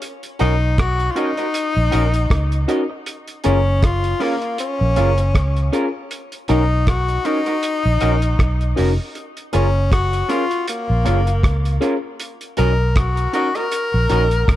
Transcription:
0.02 closed hi-hat
0.23 closed hi-hat
0.39 B1 C#4 D#4 F#4 A#4 D#5, closed hi-hat
0.78 F#4, kick, cross-stick, closed hi-hat
1.00 closed hi-hat
1.11 F4
1.15 C#4 D#4 F#4 A#4 D#5, closed hi-hat
1.37 F#4 A#4 D#5, closed hi-hat
1.54 closed hi-hat
1.77 A#1
1.91 A#1 C#4 D#4 F#4 A#4 D#5, closed hi-hat
2.14 closed hi-hat
2.30 C#2, kick, cross-stick, closed hi-hat
2.52 closed hi-hat
2.68 C#4 D#4 F#4 A#4 D#5, closed hi-hat
2.90 muted clean electric guitar stroke
3.06 closed hi-hat
3.28 closed hi-hat
3.44 F#1 C#4 F4 G#4 A#4, closed hi-hat
3.83 F4, kick, cross-stick, closed hi-hat
4.04 closed hi-hat
4.20 A#3 C#4 F4 G#4 A#4, open hi-hat
4.42 closed hi-hat
4.58 C#4, closed hi-hat
4.81 A#1
4.96 F#1 C#4 F4 G#4 A#4, closed hi-hat
5.18 muted clean electric guitar stroke, closed hi-hat
5.35 C#2, kick, cross-stick, closed hi-hat
5.57 closed hi-hat
5.73 C#4 F4 G#4 A#4, closed hi-hat
6.11 closed hi-hat
6.32 closed hi-hat
6.48 B1 C#4 D#4 F#4 A#4, closed hi-hat
6.87 F#4, kick, cross-stick, closed hi-hat
7.08 closed hi-hat
7.25 C#4 D#4 F#4 A#4, closed hi-hat
7.46 D#4 F#4 A#4, closed hi-hat
7.63 closed hi-hat
7.85 A#1
8.01 A#1 C#4 D#4 F#4 A#4, closed hi-hat
8.22 closed hi-hat
8.39 B1, kick, cross-stick, closed hi-hat
8.61 closed hi-hat
8.76 F1 C#4 D#4 F#4 A#4, open hi-hat
9.15 closed hi-hat
9.37 closed hi-hat
9.53 F#1 C#4 F4 G#4 A#4, closed hi-hat
9.92 F#4, kick, cross-stick, closed hi-hat
10.13 closed hi-hat
10.28 C#4 F4 G#4 A#4, closed hi-hat
10.51 closed hi-hat
10.68 A#3, closed hi-hat
10.90 A#1
11.05 F#1 C#4 F4 G#4 A#4, closed hi-hat
11.27 muted clean electric guitar stroke, closed hi-hat
11.43 C#2, kick, cross-stick, closed hi-hat
11.65 closed hi-hat
11.80 C#4 F4 G#4 A#4, closed hi-hat
12.20 closed hi-hat
12.41 closed hi-hat
12.57 B1 C#4 D#4 F#4 A#4 D#5, closed hi-hat
12.96 F#4, kick, cross-stick, closed hi-hat
13.17 closed hi-hat
13.33 C#4 D#4 F#4 A#4 D#5, closed hi-hat
13.55 F#4 A#4 D#5, closed hi-hat
13.72 closed hi-hat
13.94 A#1
14.09 A#1 C#4 D#4 F#4 A#4 D#5, closed hi-hat
14.31 closed hi-hat
14.48 C#2, kick, cross-stick, closed hi-hat

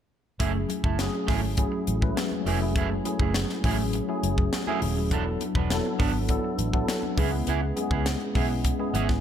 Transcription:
0.39 F#1 F#3 A3 C#4 E4 G#4, kick, closed hi-hat, muted conga, low conga
0.54 muted clean electric guitar stroke
0.69 muted clean electric guitar stroke, closed hi-hat, muted conga, high conga
0.84 F#1 A3 E4 A4, kick
0.98 F#3 A3 C#4 E4 G#4, snare, closed hi-hat, muted conga
1.14 muted clean electric guitar stroke
1.27 G#1 A3 E4 G#4, kick, snare, open hi-hat, low conga
1.43 muted clean electric guitar stroke
1.57 F#3 A3 C#4 E4 G#4, muted clean electric guitar stroke, kick, closed hi-hat, muted conga
1.72 muted clean electric guitar stroke
1.87 A1, closed hi-hat, muted conga, high conga
2.02 F#3 G#3 C#4 E4 B4, muted clean electric guitar stroke, kick
2.08 A3
2.17 muted clean electric guitar stroke, snare, closed hi-hat
2.32 muted clean electric guitar stroke, high conga
2.46 F1 A3 E4 G#4, open hi-hat, high conga, low conga
2.60 F#3 A3 C#4 E4 G#4, muted clean electric guitar stroke
2.76 F#1 A3 E4 G#4, kick, closed hi-hat, muted conga, low conga
2.91 muted clean electric guitar stroke
3.05 F#3 A3 C#4 E4 G#4, muted clean electric guitar stroke, closed hi-hat, high conga
3.20 F#1 A3 E4 G#4, kick
3.34 snare, closed hi-hat
3.49 muted clean electric guitar stroke, snare
3.63 A1 F#3 A3 C#4 E4 G#4, kick, open hi-hat, muted conga, low conga
3.79 muted clean electric guitar stroke
3.93 muted clean electric guitar stroke, closed hi-hat
4.08 F#3 A3 C#4 E4 G#4, muted clean electric guitar stroke
4.23 F#1, closed hi-hat, muted conga, high conga
4.38 muted clean electric guitar stroke, kick
4.53 muted clean electric guitar stroke, snare, closed hi-hat, muted conga
4.66 F#3 A3 C#4 E4 G#4, high conga
4.82 D#1, muted clean electric guitar stroke, open hi-hat, muted conga, high conga, low conga
4.97 muted clean electric guitar stroke
5.11 E1 F#3 B3 D4 E4 A4, kick, closed hi-hat, low conga
5.27 muted clean electric guitar stroke
5.40 muted clean electric guitar stroke, closed hi-hat, muted conga, high conga
5.55 E1 B3 D4 B4, kick
5.70 F#3 B3 D4 E4 A4, snare, closed hi-hat
5.86 muted clean electric guitar stroke
5.99 G#1 B3 D4 A4, kick, open hi-hat, muted conga, low conga
6.14 muted clean electric guitar stroke
6.29 F#3 B3 D4 E4 A4, muted clean electric guitar stroke, kick, closed hi-hat
6.44 muted clean electric guitar stroke
6.58 A1, closed hi-hat, muted conga, high conga
6.73 F#3 B3 D4 E4 A4, muted clean electric guitar stroke, kick
6.88 muted clean electric guitar stroke, snare, closed hi-hat
7.03 muted clean electric guitar stroke, high conga
7.16 C#2 G#3 B3 C#4 E4 G#4, kick, open hi-hat, muted conga, high conga, low conga
7.33 muted clean electric guitar stroke
7.47 C#2 B3 E4 G#4, closed hi-hat, low conga
7.63 muted clean electric guitar stroke
7.76 G#3 B3 C#4 E4 G#4, muted clean electric guitar stroke, closed hi-hat, muted conga, high conga
7.91 C#2 B3 E4 G#4, kick
8.06 snare, closed hi-hat, muted conga
8.22 muted clean electric guitar stroke
8.35 B1 G#3 B3 C#4 E4 G#4, kick, open hi-hat, low conga
8.50 muted clean electric guitar stroke
8.64 kick, closed hi-hat, muted conga
8.79 G#3 B3 C#4 E4 G#4, muted clean electric guitar stroke
8.94 G#1 B3 E4 G#4, closed hi-hat, muted conga, high conga
9.09 muted clean electric guitar stroke, kick, snare

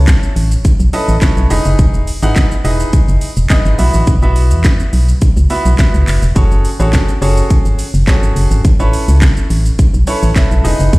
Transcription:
Already playing: C#2 C#4 E4 A4 B4 C#5
0.08 kick, snare, clap, closed hi-hat, shaker
0.23 shaker
0.36 A1, open hi-hat, shaker
0.51 shaker
0.65 kick, closed hi-hat, shaker
0.80 B1, shaker
0.93 C#4 E4 A4 B4 D#5, open hi-hat, shaker
1.08 A1, shaker
1.22 C#4 E4 A4 B4 C#5, kick, snare, clap, closed hi-hat, shaker
1.37 B1, shaker
1.50 E1 D#4 E4 G#4 B4 D#5, open hi-hat, shaker
1.65 F#1, shaker
1.79 E1, kick, closed hi-hat, shaker
1.94 shaker
2.07 open hi-hat, shaker
2.23 G#1 D#4 E4 G#4 B4 F#5, shaker
2.36 kick, snare, clap, closed hi-hat, shaker
2.51 shaker
2.64 E1 D#4 E4 G#4 B4 D#5, open hi-hat, shaker
2.80 shaker
2.93 kick, closed hi-hat, shaker
3.08 F#1, shaker
3.21 open hi-hat, shaker
3.37 E1, shaker
3.50 D#4 E4 G#4 B4 D#5, kick, snare, clap, closed hi-hat, shaker
3.65 G#1, shaker
3.78 B1 B3 E4 F#4 B4 E5, open hi-hat, shaker
3.94 A1, shaker
4.07 B1, kick, closed hi-hat, shaker
4.22 B3 E4 F#4 B4 E5, shaker
4.36 open hi-hat, shaker
4.51 E2, shaker
4.64 kick, snare, clap, closed hi-hat, shaker
4.79 shaker
4.93 B1, open hi-hat, shaker
5.08 shaker
5.21 kick, closed hi-hat, shaker
5.37 C#2, shaker
5.50 B3 E4 F#4 B4 E5, open hi-hat, shaker
5.65 B1, shaker
5.79 B3 E4 F#4 B4 E5, kick, snare, clap, closed hi-hat, shaker
5.94 C#2, shaker
6.08 F#1, clap, open hi-hat, shaker
6.22 E1, shaker
6.35 F#1 C#4 F#4 G#4 A4 C#5, kick, closed hi-hat, shaker
6.51 shaker
6.65 open hi-hat, shaker
6.79 A1 C#4 F#4 G#4 A4 C#5, shaker
6.93 kick, snare, clap, closed hi-hat, shaker
7.09 shaker
7.22 F#1 C#4 F#4 G#4 A4 C#5, open hi-hat, shaker
7.37 shaker
7.50 kick, closed hi-hat, shaker
7.65 G#1, shaker
7.79 open hi-hat, shaker
7.94 F#1, shaker
8.07 C#4 F#4 G#4 A4 C#5, kick, snare, clap, closed hi-hat, shaker
8.23 G#1, shaker
8.36 F#1, open hi-hat, shaker
8.51 G#1, shaker
8.65 A1, kick, closed hi-hat, shaker
8.79 C#4 E4 A4 B4 C#5, shaker
8.93 open hi-hat, shaker
9.08 C#2, shaker
9.22 kick, snare, clap, closed hi-hat, shaker
9.37 shaker
9.50 A1, open hi-hat, shaker
9.65 shaker
9.79 kick, closed hi-hat, shaker
9.94 B1, shaker
10.07 C#4 E4 A4 B4 C#5, open hi-hat, shaker
10.23 A1, shaker
10.36 C#4 E4 A4 B4 E5, kick, snare, clap, closed hi-hat, shaker
10.51 B1, shaker
10.64 E1 D#4 E4 G#4 B4 D#5, open hi-hat, shaker
10.80 F#1, shaker
10.93 E2, kick, closed hi-hat, shaker

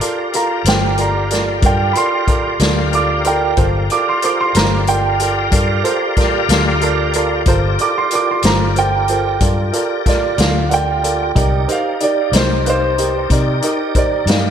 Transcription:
Already playing: G4 A#4 D5 F5
0.00 F4 A4 A#4 D5, closed hi-hat
0.33 F4 A4 A#4 F5 A#5, closed hi-hat
0.65 G1 F4 A4 A#4 C5, snare, closed hi-hat
0.69 G5
0.97 F4 A4 A#4 D5 A#5, closed hi-hat
1.30 F4 A4 A#4 D5, snare, closed hi-hat
1.62 G2 F4 A4 A#4 D5 G5, kick, closed hi-hat
1.93 F4 A4 A#4 D5 B5, closed hi-hat
1.97 C6
2.27 F4 A4 A#4 D5, kick, closed hi-hat
2.60 D2 F4 A4 A#4 D5, snare, closed hi-hat
2.93 F4 A4 A#4 D5 D6, closed hi-hat
3.24 F4 A4 A#4 D5 G5, closed hi-hat
3.57 G1 F4 G4 A4 A#4 C5 D5 F5, kick, closed hi-hat
3.90 F4 A4 A#4 D5 D6, closed hi-hat
4.09 C6
4.22 F4 A4 A#4 C5 D6, closed hi-hat
4.41 C6
4.55 G1 F4 A4 A#4 C5 A#5, snare, closed hi-hat
4.87 F4 A4 A#4 D5 G5, closed hi-hat
5.20 F4 A4 A#4 D5, closed hi-hat
5.52 G2 F4 A4 A#4 D5, kick, closed hi-hat
5.84 F4 A4 A#4 C5, closed hi-hat
6.16 F4 A4 A#4 D5, kick, snare, closed hi-hat
6.49 D2 F4 A4 A#4 F5, snare, closed hi-hat
6.81 F4 A4 A#4 D5, closed hi-hat
7.13 F4 A4 A#4 D5, closed hi-hat
7.46 G1 F4 G4 A4 A#4 C5 D5, kick, closed hi-hat
7.79 F4 A4 A#4 D5 D6, closed hi-hat
7.98 C6
8.11 F4 A4 A#4 D5, closed hi-hat
8.15 D6
8.31 C6
8.42 G1 F4 A4 A#4 C5 A#5, snare, closed hi-hat
8.76 F4 A4 A#4 C5 G5, closed hi-hat
9.08 F4 A4 A#4 C5, closed hi-hat
9.40 G2 F4 A4 A#4 D5, kick, closed hi-hat
9.73 F4 A4 A#4 D5, closed hi-hat
10.06 F4 A4 A#4 D5 F5, kick, snare, closed hi-hat
10.37 D2 F4 A4 A#4 D5 F5, snare, closed hi-hat
10.69 F4 A4 A#4 D5 F#5, closed hi-hat
10.74 G5
11.03 F4 A4 A#4 D5, closed hi-hat
11.35 C2 D#4 G4 A#4 D5, kick, closed hi-hat
11.68 D#4 G4 A#4 C5 F5, closed hi-hat
12.00 D#4 G4 A#4 D5, closed hi-hat
12.32 C2 D#4 G4 A#4 C5, snare, closed hi-hat
12.36 C5
12.65 D#4 G4 A#4 B4 F5, closed hi-hat
12.70 C5
12.98 D#4 G4 A#4 D#5, closed hi-hat
13.30 C3 D#4 G4 A#4 D5, kick, closed hi-hat
13.62 D#4 G4 A#4 D#5, closed hi-hat
13.95 D#4 G4 A#4 C5 D5, kick, closed hi-hat
14.26 G2 D#4 G4 A#4 D5 F5, snare, closed hi-hat

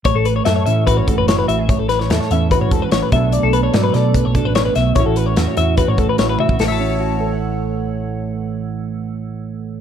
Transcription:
0.05 A1 A2 C#5, kick, closed hi-hat
0.15 A1 A4
0.25 B4, closed hi-hat
0.36 C#5
0.45 F#2 A4 E5, snare, closed hi-hat
0.56 C#5
0.66 A2 E3 C#4 E5, closed hi-hat
0.87 F#4 B4, kick, closed hi-hat
0.97 A1 C#5
1.08 A2 A4, kick, closed hi-hat
1.18 F#1 B4
1.28 E4 C#5, snare, closed hi-hat
1.38 B4
1.47 A1 F#4 E5, closed hi-hat
1.59 G#4
1.69 A2 C#5, kick, closed hi-hat
1.79 A1 A4
1.89 B4, snare, closed hi-hat
2.00 C#5, snare
2.10 E2 A4 E5, snare, closed hi-hat
2.21 C#5, snare
2.31 E2 E3 C#4 E5, closed hi-hat
2.51 F#4 B4, kick, closed hi-hat
2.61 A2 C#5
2.71 E2 G#2 A4, kick, closed hi-hat
2.82 B4
2.92 A1 A2 C#5, snare, closed hi-hat
3.03 B4
3.12 B1 B2 F#3 A3 D4 A4 E5, kick, closed hi-hat
3.32 D5, closed hi-hat
3.43 B1 A4
3.53 A4 B4, closed hi-hat
3.63 C#5
3.73 G#2 F#3 A3 D5, snare, closed hi-hat
3.84 B4
3.94 B2 A4 D5, snare, closed hi-hat
4.14 F#2 B4, kick, closed hi-hat
4.25 B1 C#5
4.35 D4 A4, kick, closed hi-hat
4.45 A1 B4
4.55 B4 C#5, snare, closed hi-hat
4.65 B4
4.75 B1 B2 E5, snare, closed hi-hat
4.95 A1 A2 E3 C#4 C#5, kick, closed hi-hat
4.99 E4 F#4
5.06 A1 A4
5.16 B4, closed hi-hat
5.26 C#5
5.37 E2 F#4 E5, snare, closed hi-hat
5.48 C#5
5.57 E2 E3 C#4 E5, closed hi-hat
5.77 F#4 B4, kick, closed hi-hat
5.88 A2 C#5
5.98 E2 A2 A4, kick, closed hi-hat
6.09 B4
6.18 A1 E4 C#5, snare, closed hi-hat
6.29 B4
6.39 F#4 E5, high tom
6.49 A1, kick
6.59 A1 A2 A4, snare, open hi-hat
6.64 C#5 E5
6.70 E3 A5
6.80 C#4
6.90 E4
7.00 F#4
7.20 A4
7.27 C#5
7.33 F#5

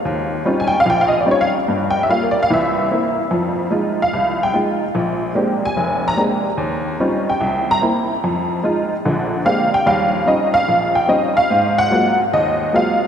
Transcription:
0.05 D#2
0.45 G3 C4 C#4 D#4 F4
0.60 G#5
0.68 G5
0.80 F5
0.86 A#1
0.90 G5
1.01 F5
1.08 D#5
1.21 D5
1.26 G3 C4 C#4 D#4 F4
1.31 C#5
1.41 F5
1.68 G2
1.91 G5
2.03 E5
2.09 G3 A#3 F4 F5
2.23 A#4
2.31 D5
2.43 F5
2.50 C2 E3 E5
2.91 A#3 C4 E4
3.31 F2 F3
3.71 G#3 D#4 F4
4.02 F5
4.13 C2
4.43 G5
4.54 G#3 D#4 F4
4.95 A#1
5.35 G#3 A#3 C4 D4 G4
5.65 G#5
5.77 F1
6.08 A#5
6.17 G#3 A#3 C4 D4 G4
6.57 D#2
7.00 G3 C4 C#4 D#4 F4
7.30 G5
7.41 C2
7.71 A#5
7.82 A#3 C4 E4
8.24 F2
8.63 G#3 D#4 F4
9.05 A#1 D3
9.45 G#3 A#3 C4 D4 G4 F5
9.74 G5
9.86 D#2 G3 F5
10.26 F3 G3 C4 C#4 D#4 D#5
10.54 F5
10.68 A#1
10.95 G5
11.08 F3 G3 C4 C#4 D#4 D#5
11.37 F5
11.50 G#2
11.78 F#5
11.90 F#3 G#3 A#3 C4 F4
12.33 D#2 D#5
12.73 F#3 G#3 A#3 C4 F4 F5

